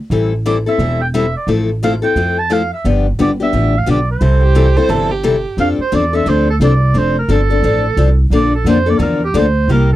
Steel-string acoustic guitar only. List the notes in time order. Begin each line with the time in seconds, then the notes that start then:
0.11 E3 G3 C4 E4 A4
0.46 E3 G3 C4 E4 A4
0.66 C4 E4 A4
0.79 E3 G3 C4 E4 A4
1.14 E3 G3 C4 E4 A4
1.48 F3 A3 C4 E4 A4
1.83 F3 A3 C4 E4 A4
2.02 C4 E4 A4
2.16 F3 A3 C4 E4 A4
2.50 F3 A3 C4 E4 A4
2.85 D3 F3 B3 D4 G4
3.19 D3 F3 B3 D4 G4
3.40 B3 D4 G4
3.53 D3 F3 B3 D4 G4
3.86 D3 F3 B3 D4 G4
4.21 C3 E3 G3 C4 E4 A4
4.55 C3 E3 G3 C4 E4 A4
4.77 G3 C4 E4 A4
4.89 C3 E3 G3 C4 E4 A4
5.23 C3 E3 G3 C4 E4 A4
5.58 F3 C4 D4 A4
5.92 F3 C4 D4 A4
6.13 C4 D4 A4
6.26 F3 C4 D4 A4
6.61 F3 C4 D4 A4
6.94 F3 C4 D4 A4
7.29 F3 C4 D4 A4
7.50 C4 D4 A4
7.64 F3 C4 D4 A4
7.97 F3 C4 D4 A4
8.31 D3 F3 A#3 D4 A4
8.66 D3 F3 A#3 D4 A4
8.86 A#3 D4 A4
8.99 D3 F3 A#3 D4 A4
9.34 D3 F3 A#3 D4 A4
9.69 C3 G3 A#3 E4 G4